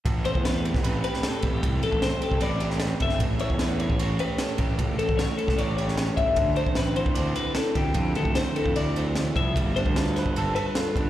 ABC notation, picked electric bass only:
X:1
M:4/4
L:1/16
Q:1/4=152
K:Am
V:1 name="Picked electric bass" clef=bass
A,,,3 E,,4 A,,, A,,,2 z4 A,,,2 | C,,2 A,,, A,,,2 z2 C,, A,,,6 G,,,2 | A,,,3 E,,4 A,,, A,,,2 z4 A,,,2 | ^C,,2 A,,, A,,,2 z2 C,, A,,,6 G,,,2 |
D,,3 A,,,4 D,, D,,2 z4 D,,2 | F,,2 D,, D,,2 z2 F,, D,,6 C,,2 | G,,,3 D,,4 G,,, G,,,2 z4 G,,,2 |]